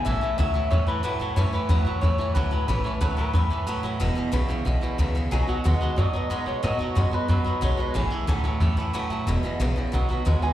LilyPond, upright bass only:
\new Staff \with { instrumentName = "Upright bass" } { \clef bass \time 4/4 \key a \lydian \tempo 4 = 182 a,,8 r8 cis,8 r8 e,8 r8 fis,8 a,8 | fis,8 r8 e,8 r8 e,8 r8 cis,8 r8 | a,,8 r8 cis,8 r8 e,8 r8 fis,8 a,8 | e,,8 r8 b,,8 r8 b,,8 r8 cis,8 r8 |
b,,8 r8 dis,8 r8 fis,8 r8 gis,8 b,8 | a,8 r8 fis,8 r8 fis,8 r8 b,,8 r8 | a,,8 r8 cis,8 r8 e,8 r8 fis,8 a,8 | e,,8 r8 ais,,8 r8 b,,8 r8 dis,8 r8 | }